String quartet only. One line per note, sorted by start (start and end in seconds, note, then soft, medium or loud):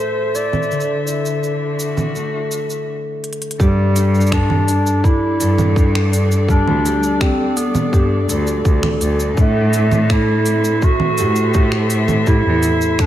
0.00 0.71 A3 medium
0.00 1.82 A4 medium
0.00 1.86 C5 medium
0.00 2.87 E5 medium
0.70 2.87 D3 medium
1.12 2.87 D4 medium
1.69 2.87 F#4 medium
3.60 9.38 G3 medium
3.76 11.70 D4 medium
4.43 13.06 A4 medium
4.93 11.13 D5 medium
9.37 13.06 A3 medium
9.65 13.06 E5 medium
9.93 13.06 C5 medium